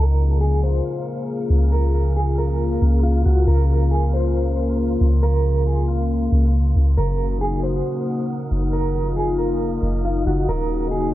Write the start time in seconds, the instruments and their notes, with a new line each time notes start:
Already playing: 808-style bass C#2, analog synth pad C#3 A#3 F4 G#4, clean electric guitar A#4, synth texture A#4 F5 C#7
0.41 clean electric guitar G#4
0.64 clean electric guitar C5
1.50 808-style bass C#2
1.72 clean electric guitar A#4
2.17 clean electric guitar G#4
2.38 clean electric guitar A#4
2.82 808-style bass C#2
3.03 clean electric guitar F4
3.25 808-style bass C#2, clean electric guitar F#4
3.47 808-style bass C#2, clean electric guitar A#4, analog synth pad A#4, synth texture C6
3.91 clean electric guitar G#4
4.13 clean electric guitar C5
5.01 808-style bass C#2
5.23 clean electric guitar A#4
5.67 clean electric guitar G#4
5.88 clean electric guitar F4
6.32 808-style bass C#2
6.76 808-style bass C#2
6.97 808-style bass F#1, analog synth pad D#4 F#4, clean electric guitar A#4, synth texture A#4 F#5 D#6
7.41 clean electric guitar G#4
7.63 clean electric guitar C5
8.51 808-style bass F#1
8.73 analog synth pad F4, clean electric guitar A#4, synth texture F5
9.17 clean electric guitar G#4
9.39 clean electric guitar A#4
9.82 808-style bass F#1
10.05 clean electric guitar F4
10.26 808-style bass F#1, clean electric guitar F#4
10.48 808-style bass D#1, analog synth pad C#3 A#3 F#4, synth texture C#4 F#5, clean electric guitar A#4
10.91 clean electric guitar G#4